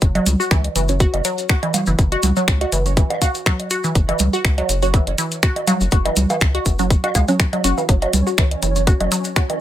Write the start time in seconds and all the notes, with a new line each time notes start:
0.01 F#1, kick, closed hi-hat, maracas
0.15 F#3, closed hi-hat, high bongo
0.26 C#2, closed hi-hat, low conga, maracas
0.40 F#4, maracas
0.51 C#2 E3, finger snap, kick, closed hi-hat, maracas
0.64 closed hi-hat, high bongo
0.76 F#1 E3, closed hi-hat, maracas
0.88 F#3 C#4 C#5, closed hi-hat, maracas
1.00 F#4, kick, closed hi-hat, maracas
1.14 F#1, closed hi-hat, high bongo
1.25 F#3, closed hi-hat, maracas
1.38 closed hi-hat, maracas
1.49 F#4, finger snap, kick, closed hi-hat, maracas
1.63 E3, closed hi-hat, high bongo
1.74 closed hi-hat, low conga, low woodblock, maracas
1.86 F#1 E3, maracas
1.99 F#1, kick, closed hi-hat, maracas
2.12 F#4, closed hi-hat, high bongo
2.23 C#2, closed hi-hat, low conga, maracas
2.36 F#3, maracas
2.48 C#2, finger snap, kick, closed hi-hat, maracas
2.61 F#4, closed hi-hat, high bongo
2.72 F#1 E3, closed hi-hat, maracas
2.86 F#3 C#4 C#5, closed hi-hat, maracas
2.97 E3, kick, closed hi-hat, maracas
3.10 closed hi-hat, high bongo, low woodblock
3.22 F#4, kick, closed hi-hat, low woodblock, maracas
3.35 closed hi-hat, maracas
3.46 F#3, finger snap, kick, closed hi-hat, maracas
3.60 closed hi-hat, high bongo
3.70 F#4, closed hi-hat, maracas
3.84 E3, maracas
3.95 F#1, kick, closed hi-hat, maracas
4.09 E3, closed hi-hat, high bongo
4.19 C#2, closed hi-hat, low conga, maracas
4.33 F#4, maracas
4.45 C#2, finger snap, kick, closed hi-hat, maracas
4.58 F#3, closed hi-hat, high bongo
4.69 F#1, closed hi-hat, maracas
4.82 F#3 C#4 F#4 C#5, closed hi-hat, maracas
4.94 E3, kick, closed hi-hat, maracas
5.07 F#1, closed hi-hat, high bongo
5.18 E3, closed hi-hat, maracas
5.32 closed hi-hat, maracas
5.43 F#4, finger snap, kick, closed hi-hat, maracas
5.56 closed hi-hat, high bongo
5.67 F#3, closed hi-hat, low conga, low woodblock, maracas
5.81 F#1, maracas
5.91 F#1 F#4, kick, closed hi-hat, maracas
6.05 E3, closed hi-hat, high bongo
6.16 C#2, closed hi-hat, low conga, maracas
6.30 E3, closed hi-hat, low woodblock, maracas
6.41 C#2, finger snap, kick, closed hi-hat, maracas
6.55 F#4, closed hi-hat, high bongo
6.66 F#1, kick, closed hi-hat, maracas
6.79 F#3 C#4 C#5, closed hi-hat, maracas
6.90 kick, closed hi-hat, maracas
7.04 F#4, closed hi-hat, high bongo, low woodblock
7.15 C#2 G#3, kick, closed hi-hat, low woodblock, maracas
7.28 F#3 C#4 C#5, closed hi-hat, maracas
7.40 finger snap, kick, closed hi-hat, maracas
7.53 F#3, closed hi-hat, high bongo
7.64 F#1 F#3 C#4 F#4 C#5, closed hi-hat, maracas
7.78 E3, low woodblock, maracas
7.89 F#1 F#3 C#4 C#5, kick, closed hi-hat, maracas
8.02 F#3, closed hi-hat, high bongo
8.13 C#2, closed hi-hat, low conga, maracas
8.27 F#4, maracas
8.38 C#2 E3, finger snap, kick, closed hi-hat, maracas
8.51 closed hi-hat, high bongo
8.62 F#1 E3, closed hi-hat, maracas
8.76 F#3 C#4 C#5, closed hi-hat, maracas
8.87 F#4, kick, closed hi-hat, maracas
9.00 F#1 F#3, closed hi-hat, high bongo
9.12 F#3, closed hi-hat, maracas
9.24 closed hi-hat, maracas
9.36 F#4, finger snap, kick, closed hi-hat, maracas
9.50 E3, closed hi-hat, high bongo